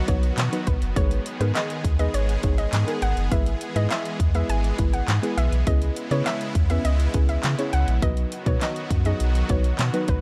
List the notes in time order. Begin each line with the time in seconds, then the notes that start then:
Already playing: D#3 F#3 B3 F#4
0.08 B1 F#3 B3 D#4 F#4 B4 C#5, kick, closed hi-hat
0.23 closed hi-hat
0.37 B2, snare, clap, closed hi-hat
0.52 F#3 B3 D#4 F#4 B4, closed hi-hat
0.67 B1 B4, kick, closed hi-hat
0.82 F#1, closed hi-hat
0.96 G#1 G#3 B3 D#4 G#4 B4 C#5, kick, closed hi-hat
1.11 closed hi-hat
1.26 closed hi-hat
1.40 G#2 G#3 B3 D#4 G#4 A#4 B4, closed hi-hat
1.55 D#5, snare, clap, closed hi-hat
1.70 closed hi-hat
1.84 D#2, kick, closed hi-hat
1.99 G#3 B3 D#4 G#4 B4 D#5, closed hi-hat
2.14 G#1 C#5, closed hi-hat
2.29 closed hi-hat
2.43 G#1 G#3 B3 D#4 G#4 C#5, kick, closed hi-hat
2.58 D#5, closed hi-hat
2.73 G#2, snare, clap, closed hi-hat
2.87 G#3 B3 D#4 G#4 A#4, closed hi-hat
3.02 G#1 F#5, closed hi-hat
3.17 F#1, closed hi-hat
3.31 G#1 E3 G#3 B3 E4 G#4 B4 E5, kick, closed hi-hat
3.46 closed hi-hat
3.61 closed hi-hat
3.75 G#2 G#3 B3 E4 G#4 B4 D#5, closed hi-hat
3.90 E5, snare, clap, closed hi-hat
4.05 closed hi-hat
4.20 E2, kick, closed hi-hat
4.34 G#3 B3 E4 G#4 B4 E5, closed hi-hat
4.49 G#1 G#5, closed hi-hat
4.64 closed hi-hat
4.78 G#1 G#3 B3 E4 G#4 B4, kick, closed hi-hat
4.93 F#5, closed hi-hat
5.08 G#2, snare, clap, closed hi-hat
5.22 G#3 B3 E4 G#4 B4, closed hi-hat
5.37 B1 E5, closed hi-hat
5.52 B1, closed hi-hat
5.66 C#2 C#3 G#3 B3 C#4 E4 G#4 B4 D#5, kick, closed hi-hat
5.82 closed hi-hat
5.96 closed hi-hat
6.11 C#3 B3 C#4 E4 G#4 B4 C#5, closed hi-hat
6.26 E5, snare, clap, closed hi-hat
6.41 closed hi-hat
6.55 E2, kick, closed hi-hat
6.70 B3 C#4 E4 G#4 B4 E5, closed hi-hat
6.85 C#2 D#5, closed hi-hat
7.00 closed hi-hat
7.14 C#2 B3 C#4 E4 G#4 B4, kick, closed hi-hat
7.29 E5, closed hi-hat
7.43 C#3, snare, clap, closed hi-hat
7.58 B3 C#4 E4 G#4 C#5, closed hi-hat
7.73 C#2 F#5, closed hi-hat
7.88 A#1, closed hi-hat
8.02 B1 D#3 F#3 B3 D#4 F#4 B4 D#5, kick, closed hi-hat
8.17 closed hi-hat
8.32 closed hi-hat
8.46 B2 F#3 B3 D#4 F#4 B4 C#5, kick, closed hi-hat
8.61 D#5, snare, clap, closed hi-hat
8.76 closed hi-hat
8.90 F#2, kick, closed hi-hat
9.05 F#3 B3 D#4 F#4 G#4 D#5, closed hi-hat
9.20 B1, closed hi-hat
9.35 closed hi-hat
9.49 B1 F#3 B3 D#4 F#4 B4 C#5, kick, closed hi-hat
9.64 closed hi-hat
9.79 B2, snare, clap, closed hi-hat
9.93 F#3 B3 D#4 F#4 B4, closed hi-hat
10.08 B1 B4, kick, closed hi-hat